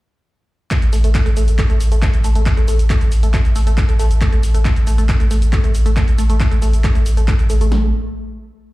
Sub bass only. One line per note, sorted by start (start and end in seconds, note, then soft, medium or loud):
0.82 0.92 A1 medium
0.93 1.03 A1 loud
1.04 1.15 A1 medium
1.26 1.36 A1 medium
1.37 1.47 A1 loud
1.48 1.58 A1 medium
1.70 1.80 A1 medium
1.80 1.91 A1 loud
1.92 2.02 A1 medium
2.14 2.24 A1 medium
2.24 2.35 A1 loud
2.35 2.46 A1 medium
2.57 2.67 A1 medium
2.68 2.79 A1 loud
2.79 2.90 A1 medium
3.01 3.11 A1 medium
3.12 3.22 A1 loud
3.23 3.34 A1 medium
3.45 3.55 A1 medium
3.56 3.66 A1 loud
3.67 3.77 A1 medium
3.89 3.99 A1 medium
3.99 4.10 A1 loud
4.11 4.21 A1 medium
4.32 4.43 A1 medium
4.43 4.54 A1 loud
4.54 4.65 A1 medium
4.76 4.86 A1 medium
4.87 4.98 A1 loud
4.98 5.09 A1 medium
5.20 5.30 A1 medium
5.31 5.41 A1 loud
5.42 5.53 A1 medium
5.64 5.74 A1 medium
5.75 5.85 A1 loud
5.86 5.96 A1 medium
6.08 6.18 A1 medium
6.18 6.29 A1 loud
6.30 6.40 A1 medium
6.51 6.62 A1 medium
6.62 6.73 A1 medium
6.73 6.84 A1 medium
6.95 7.05 A1 medium
7.06 7.17 A1 loud
7.17 7.28 A1 medium
7.39 7.49 A1 medium
7.50 7.60 A1 loud
7.61 7.71 A1 medium
7.72 7.92 A1 loud